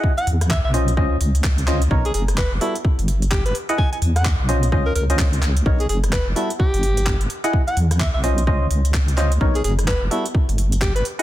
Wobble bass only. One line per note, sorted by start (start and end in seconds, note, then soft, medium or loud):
0.27 0.61 E2 loud
0.65 0.99 B1 medium
0.97 1.17 C#2 medium
1.21 1.88 C#2 medium
1.91 2.11 B1 medium
2.14 2.48 F#1 loud
2.52 2.60 F#1 medium
2.99 3.52 G1 medium
4.02 4.36 E2 loud
4.40 4.74 B1 medium
4.72 4.92 C#2 medium
4.96 5.63 C#2 medium
5.66 5.86 B1 loud
5.89 6.23 F#1 loud
6.27 6.35 F#1 medium
6.74 7.27 G1 medium
7.77 8.11 E2 loud
8.14 8.49 B1 medium
8.47 8.67 C#2 medium
8.71 9.38 C#2 medium
9.41 9.61 B1 loud
9.64 9.98 F#1 loud
10.02 10.10 F#1 medium
10.49 11.02 G1 medium